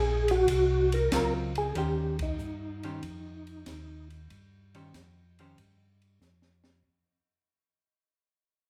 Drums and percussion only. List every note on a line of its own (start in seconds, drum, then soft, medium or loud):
0.28 ride soft
0.48 kick soft
0.48 ride medium
0.92 ride soft
1.12 kick soft
1.12 snare medium
1.12 hi-hat pedal medium
1.12 ride medium
1.55 ride soft
1.75 kick soft
1.75 ride medium
2.19 kick medium
2.19 ride medium
2.39 hi-hat pedal soft
2.83 ride medium
3.03 kick soft
3.03 ride medium
3.47 ride soft
3.66 kick soft
3.66 snare medium
3.66 hi-hat pedal medium
3.66 ride medium
4.10 ride soft
4.30 kick soft
4.30 ride medium
4.75 ride medium
4.94 kick soft
4.94 snare medium
4.94 hi-hat pedal medium
4.94 ride medium
5.39 ride soft
5.58 kick soft
5.58 ride medium
6.02 ride soft
6.21 snare medium
6.21 hi-hat pedal medium
6.42 snare medium
6.64 snare medium